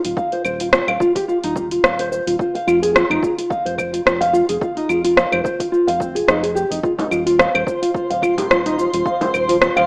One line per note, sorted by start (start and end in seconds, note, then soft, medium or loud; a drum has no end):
0.04 0.14 D#1 loud
0.04 0.16 F4 medium
0.04 open hi-hat medium
0.04 cabasa soft
0.17 0.31 F5 medium
0.17 kick loud
0.17 cabasa soft
0.32 0.43 C5 medium
0.32 open hi-hat soft
0.44 0.81 D#1 loud
0.44 0.59 C5 medium
0.44 cabasa medium
0.44 claves medium
0.60 0.67 F4 medium
0.60 open hi-hat medium
0.60 cabasa soft
0.73 0.87 F4 medium
0.73 cross-stick loud
0.73 cabasa soft
0.87 0.97 D#1 loud
0.87 1.00 F5 loud
0.87 claves medium
1.00 1.15 F4 loud
1.00 kick loud
1.00 cabasa medium
1.16 1.27 G4 medium
1.16 kick medium
1.16 open hi-hat medium
1.16 cabasa soft
1.28 1.37 F4 medium
1.28 cabasa soft
1.43 1.78 D#1 medium
1.43 1.55 D#4 medium
1.43 open hi-hat soft
1.56 1.70 F4 medium
1.56 kick loud
1.56 cabasa medium
1.71 1.82 F4 medium
1.71 open hi-hat medium
1.71 cabasa soft
1.84 2.20 D#1 medium
1.84 1.97 F5 medium
1.84 cross-stick medium
1.84 cabasa soft
1.99 2.10 C5 medium
1.99 open hi-hat soft
2.12 2.26 C5 medium
2.12 cabasa medium
2.27 2.36 D#1 medium
2.27 2.34 F4 medium
2.27 open hi-hat medium
2.27 cabasa soft
2.39 2.54 F4 medium
2.39 kick loud
2.39 cabasa soft
2.55 2.66 F5 medium
2.55 open hi-hat soft
2.67 3.03 F1 loud
2.67 2.82 F4 loud
2.67 cabasa medium
2.67 claves medium
2.82 2.93 G#4 medium
2.82 open hi-hat medium
2.82 cabasa soft
2.95 3.03 F4 medium
2.95 cross-stick medium
2.95 cabasa soft
3.10 3.19 F1 loud
3.10 3.21 D#4 medium
3.10 claves medium
3.22 3.36 F4 medium
3.22 kick loud
3.22 cabasa medium
3.38 3.49 F4 medium
3.38 open hi-hat medium
3.38 cabasa soft
3.50 3.64 F5 medium
3.50 kick loud
3.50 cabasa soft
3.65 4.01 F1 medium
3.65 3.77 C5 medium
3.65 open hi-hat soft
3.78 3.92 C5 medium
3.78 kick medium
3.78 cabasa medium
3.78 claves medium
3.93 4.00 F4 medium
3.93 open hi-hat medium
3.93 cabasa soft
4.05 4.42 F1 medium
4.05 4.20 F4 medium
4.05 cross-stick medium
4.05 cabasa soft
4.21 4.33 F5 medium
4.21 open hi-hat soft
4.33 4.48 F4 medium
4.33 cabasa medium
4.49 4.58 F1 loud
4.49 4.60 G#4 medium
4.49 open hi-hat soft
4.49 cabasa soft
4.61 4.70 F4 medium
4.61 kick loud
4.61 cabasa soft
4.77 4.88 D#4 medium
4.77 open hi-hat soft
4.89 5.26 F1 loud
4.89 5.03 F4 medium
4.89 cabasa medium
4.89 claves medium
5.04 5.16 F4 medium
5.04 open hi-hat medium
5.04 cabasa soft
5.17 5.30 F5 medium
5.17 cross-stick medium
5.17 cabasa soft
5.32 5.41 F1 loud
5.32 5.43 C5 medium
5.32 claves medium
5.44 5.59 C5 medium
5.44 kick loud
5.44 cabasa medium
5.59 5.67 F4 medium
5.59 kick medium
5.59 open hi-hat medium
5.59 cabasa soft
5.72 5.87 F4 medium
5.72 cabasa soft
5.87 6.23 F1 medium
5.87 5.99 F5 loud
5.87 open hi-hat soft
6.00 6.14 C4 medium
6.00 kick loud
6.00 cabasa medium
6.15 6.27 G#4 medium
6.15 open hi-hat soft
6.15 cabasa soft
6.28 6.65 F1 medium
6.28 6.42 D#4 medium
6.28 cross-stick medium
6.28 cabasa soft
6.43 6.55 G#4 medium
6.43 open hi-hat soft
6.55 6.70 G4 medium
6.55 cabasa medium
6.70 6.80 F1 loud
6.70 6.82 D#4 medium
6.70 open hi-hat soft
6.70 cabasa soft
6.83 6.92 F4 medium
6.83 9.87 C5 medium
6.83 kick loud
6.83 cabasa soft
6.98 7.10 D#4 medium
6.98 open hi-hat soft
6.98 frame drum medium
7.11 7.48 D#1 loud
7.11 7.25 F4 medium
7.11 cabasa medium
7.11 claves medium
7.26 7.38 F4 medium
7.26 open hi-hat soft
7.26 cabasa soft
7.39 7.53 F5 medium
7.39 cross-stick medium
7.39 cabasa soft
7.54 7.63 D#1 medium
7.54 7.66 C5 medium
7.54 claves medium
7.67 7.81 C5 medium
7.67 kick loud
7.67 cabasa medium
7.82 7.89 F4 medium
7.82 open hi-hat medium
7.82 cabasa soft
7.94 8.09 F4 medium
7.94 kick medium
7.94 cabasa soft
8.10 8.45 D#1 medium
8.10 8.22 F5 loud
8.10 open hi-hat soft
8.22 8.37 F4 medium
8.22 kick medium
8.22 cabasa medium
8.22 claves medium
8.38 8.49 G4 medium
8.38 open hi-hat medium
8.38 frame drum medium
8.38 cabasa soft
8.50 8.87 D#1 medium
8.50 8.59 F4 medium
8.50 cross-stick medium
8.50 cabasa soft
8.66 8.77 D#4 medium
8.66 open hi-hat soft
8.78 8.92 F4 medium
8.78 cabasa medium
8.93 9.02 D#1 loud
8.93 9.05 F4 medium
8.93 open hi-hat medium
8.93 cabasa soft
9.06 9.20 F5 medium
9.06 kick loud
9.06 cabasa soft
9.21 9.32 C5 medium
9.21 open hi-hat soft
9.21 frame drum medium
9.33 9.70 D#1 loud
9.33 9.48 C5 medium
9.33 cabasa medium
9.33 claves medium
9.48 9.56 F4 medium
9.48 open hi-hat medium
9.48 cabasa soft
9.61 9.76 F4 medium
9.61 cross-stick medium
9.61 cabasa soft
9.76 9.86 D#1 loud
9.76 9.87 F5 loud
9.76 claves medium